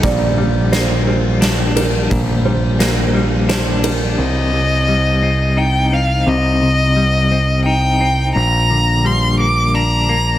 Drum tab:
RD |x-x-xx|x-x-xx|------|------|
SD |--o-o-|--o-o-|------|------|
BD |o-----|o-----|------|------|

RD |------|
SD |------|
BD |------|